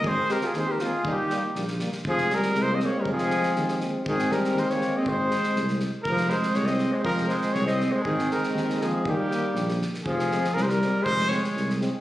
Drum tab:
SD |--ooo-o-|--o-oooo|-oooo-o-|-oooooo-|
BD |o-------|o-------|o-------|o-------|

SD |-oooooo-|--ooooo-|-oooooo-|-oooooo-|
BD |o-------|o-------|o-------|o-------|

SD |-oooooo-|--o-oooo|-oooooo-|-oooooo-|
BD |o-------|o-------|o-------|o-------|